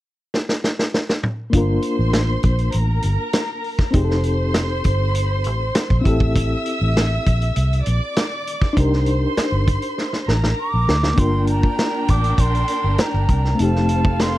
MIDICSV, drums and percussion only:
0, 0, Header, 1, 2, 480
1, 0, Start_track
1, 0, Key_signature, -2, "minor"
1, 0, Tempo, 602410
1, 1222, Time_signature, 4, 2, 24, 8
1, 11458, End_track
2, 0, Start_track
2, 0, Title_t, "Drums"
2, 270, Note_on_c, 9, 38, 59
2, 350, Note_off_c, 9, 38, 0
2, 391, Note_on_c, 9, 38, 66
2, 470, Note_off_c, 9, 38, 0
2, 510, Note_on_c, 9, 38, 77
2, 590, Note_off_c, 9, 38, 0
2, 631, Note_on_c, 9, 38, 75
2, 711, Note_off_c, 9, 38, 0
2, 751, Note_on_c, 9, 38, 84
2, 831, Note_off_c, 9, 38, 0
2, 872, Note_on_c, 9, 38, 89
2, 951, Note_off_c, 9, 38, 0
2, 983, Note_on_c, 9, 45, 84
2, 1062, Note_off_c, 9, 45, 0
2, 1221, Note_on_c, 9, 36, 104
2, 1222, Note_on_c, 9, 42, 88
2, 1301, Note_off_c, 9, 36, 0
2, 1302, Note_off_c, 9, 42, 0
2, 1453, Note_on_c, 9, 42, 57
2, 1533, Note_off_c, 9, 42, 0
2, 1698, Note_on_c, 9, 42, 75
2, 1700, Note_on_c, 9, 38, 102
2, 1778, Note_off_c, 9, 42, 0
2, 1780, Note_off_c, 9, 38, 0
2, 1934, Note_on_c, 9, 42, 62
2, 1942, Note_on_c, 9, 36, 77
2, 2014, Note_off_c, 9, 42, 0
2, 2022, Note_off_c, 9, 36, 0
2, 2059, Note_on_c, 9, 42, 42
2, 2139, Note_off_c, 9, 42, 0
2, 2169, Note_on_c, 9, 42, 85
2, 2249, Note_off_c, 9, 42, 0
2, 2410, Note_on_c, 9, 42, 69
2, 2490, Note_off_c, 9, 42, 0
2, 2654, Note_on_c, 9, 42, 82
2, 2658, Note_on_c, 9, 38, 102
2, 2734, Note_off_c, 9, 42, 0
2, 2738, Note_off_c, 9, 38, 0
2, 2901, Note_on_c, 9, 46, 38
2, 2981, Note_off_c, 9, 46, 0
2, 3017, Note_on_c, 9, 36, 80
2, 3022, Note_on_c, 9, 38, 29
2, 3097, Note_off_c, 9, 36, 0
2, 3102, Note_off_c, 9, 38, 0
2, 3135, Note_on_c, 9, 42, 83
2, 3139, Note_on_c, 9, 36, 102
2, 3214, Note_off_c, 9, 42, 0
2, 3219, Note_off_c, 9, 36, 0
2, 3272, Note_on_c, 9, 38, 31
2, 3352, Note_off_c, 9, 38, 0
2, 3374, Note_on_c, 9, 42, 54
2, 3454, Note_off_c, 9, 42, 0
2, 3618, Note_on_c, 9, 42, 76
2, 3620, Note_on_c, 9, 38, 102
2, 3697, Note_off_c, 9, 42, 0
2, 3700, Note_off_c, 9, 38, 0
2, 3857, Note_on_c, 9, 42, 64
2, 3864, Note_on_c, 9, 36, 75
2, 3936, Note_off_c, 9, 42, 0
2, 3944, Note_off_c, 9, 36, 0
2, 4101, Note_on_c, 9, 42, 87
2, 4180, Note_off_c, 9, 42, 0
2, 4335, Note_on_c, 9, 42, 68
2, 4414, Note_off_c, 9, 42, 0
2, 4579, Note_on_c, 9, 42, 84
2, 4583, Note_on_c, 9, 38, 111
2, 4659, Note_off_c, 9, 42, 0
2, 4663, Note_off_c, 9, 38, 0
2, 4703, Note_on_c, 9, 36, 83
2, 4783, Note_off_c, 9, 36, 0
2, 4824, Note_on_c, 9, 36, 81
2, 4828, Note_on_c, 9, 42, 56
2, 4903, Note_off_c, 9, 36, 0
2, 4907, Note_off_c, 9, 42, 0
2, 4943, Note_on_c, 9, 36, 81
2, 5022, Note_off_c, 9, 36, 0
2, 5064, Note_on_c, 9, 36, 106
2, 5066, Note_on_c, 9, 42, 91
2, 5144, Note_off_c, 9, 36, 0
2, 5146, Note_off_c, 9, 42, 0
2, 5304, Note_on_c, 9, 42, 55
2, 5384, Note_off_c, 9, 42, 0
2, 5550, Note_on_c, 9, 42, 70
2, 5552, Note_on_c, 9, 38, 107
2, 5630, Note_off_c, 9, 42, 0
2, 5632, Note_off_c, 9, 38, 0
2, 5790, Note_on_c, 9, 36, 73
2, 5790, Note_on_c, 9, 42, 62
2, 5869, Note_off_c, 9, 36, 0
2, 5869, Note_off_c, 9, 42, 0
2, 5908, Note_on_c, 9, 42, 44
2, 5988, Note_off_c, 9, 42, 0
2, 6023, Note_on_c, 9, 42, 83
2, 6103, Note_off_c, 9, 42, 0
2, 6157, Note_on_c, 9, 42, 48
2, 6237, Note_off_c, 9, 42, 0
2, 6261, Note_on_c, 9, 42, 73
2, 6341, Note_off_c, 9, 42, 0
2, 6505, Note_on_c, 9, 42, 89
2, 6509, Note_on_c, 9, 38, 108
2, 6585, Note_off_c, 9, 42, 0
2, 6589, Note_off_c, 9, 38, 0
2, 6751, Note_on_c, 9, 42, 60
2, 6830, Note_off_c, 9, 42, 0
2, 6865, Note_on_c, 9, 36, 84
2, 6872, Note_on_c, 9, 38, 30
2, 6945, Note_off_c, 9, 36, 0
2, 6952, Note_off_c, 9, 38, 0
2, 6987, Note_on_c, 9, 36, 101
2, 6989, Note_on_c, 9, 42, 82
2, 7067, Note_off_c, 9, 36, 0
2, 7068, Note_off_c, 9, 42, 0
2, 7117, Note_on_c, 9, 38, 32
2, 7197, Note_off_c, 9, 38, 0
2, 7220, Note_on_c, 9, 42, 59
2, 7299, Note_off_c, 9, 42, 0
2, 7467, Note_on_c, 9, 42, 74
2, 7469, Note_on_c, 9, 38, 91
2, 7547, Note_off_c, 9, 42, 0
2, 7549, Note_off_c, 9, 38, 0
2, 7709, Note_on_c, 9, 42, 64
2, 7710, Note_on_c, 9, 36, 82
2, 7788, Note_off_c, 9, 42, 0
2, 7790, Note_off_c, 9, 36, 0
2, 7824, Note_on_c, 9, 42, 46
2, 7904, Note_off_c, 9, 42, 0
2, 7953, Note_on_c, 9, 38, 46
2, 8033, Note_off_c, 9, 38, 0
2, 8071, Note_on_c, 9, 38, 44
2, 8151, Note_off_c, 9, 38, 0
2, 8195, Note_on_c, 9, 38, 62
2, 8275, Note_off_c, 9, 38, 0
2, 8314, Note_on_c, 9, 38, 59
2, 8394, Note_off_c, 9, 38, 0
2, 8675, Note_on_c, 9, 38, 87
2, 8754, Note_off_c, 9, 38, 0
2, 8791, Note_on_c, 9, 38, 77
2, 8871, Note_off_c, 9, 38, 0
2, 8906, Note_on_c, 9, 36, 104
2, 8906, Note_on_c, 9, 42, 89
2, 8985, Note_off_c, 9, 36, 0
2, 8985, Note_off_c, 9, 42, 0
2, 9141, Note_on_c, 9, 42, 59
2, 9220, Note_off_c, 9, 42, 0
2, 9270, Note_on_c, 9, 36, 93
2, 9350, Note_off_c, 9, 36, 0
2, 9390, Note_on_c, 9, 42, 71
2, 9392, Note_on_c, 9, 38, 98
2, 9470, Note_off_c, 9, 42, 0
2, 9472, Note_off_c, 9, 38, 0
2, 9627, Note_on_c, 9, 42, 66
2, 9632, Note_on_c, 9, 36, 70
2, 9707, Note_off_c, 9, 42, 0
2, 9712, Note_off_c, 9, 36, 0
2, 9752, Note_on_c, 9, 42, 43
2, 9831, Note_off_c, 9, 42, 0
2, 9865, Note_on_c, 9, 36, 89
2, 9865, Note_on_c, 9, 42, 91
2, 9944, Note_off_c, 9, 36, 0
2, 9945, Note_off_c, 9, 42, 0
2, 9997, Note_on_c, 9, 42, 45
2, 10077, Note_off_c, 9, 42, 0
2, 10101, Note_on_c, 9, 42, 74
2, 10181, Note_off_c, 9, 42, 0
2, 10344, Note_on_c, 9, 42, 82
2, 10348, Note_on_c, 9, 38, 105
2, 10424, Note_off_c, 9, 42, 0
2, 10428, Note_off_c, 9, 38, 0
2, 10588, Note_on_c, 9, 36, 83
2, 10589, Note_on_c, 9, 42, 53
2, 10668, Note_off_c, 9, 36, 0
2, 10669, Note_off_c, 9, 42, 0
2, 10715, Note_on_c, 9, 38, 29
2, 10794, Note_off_c, 9, 38, 0
2, 10828, Note_on_c, 9, 42, 82
2, 10908, Note_off_c, 9, 42, 0
2, 10961, Note_on_c, 9, 38, 30
2, 11041, Note_off_c, 9, 38, 0
2, 11065, Note_on_c, 9, 42, 57
2, 11144, Note_off_c, 9, 42, 0
2, 11193, Note_on_c, 9, 36, 97
2, 11272, Note_off_c, 9, 36, 0
2, 11310, Note_on_c, 9, 42, 78
2, 11312, Note_on_c, 9, 38, 98
2, 11389, Note_off_c, 9, 42, 0
2, 11391, Note_off_c, 9, 38, 0
2, 11458, End_track
0, 0, End_of_file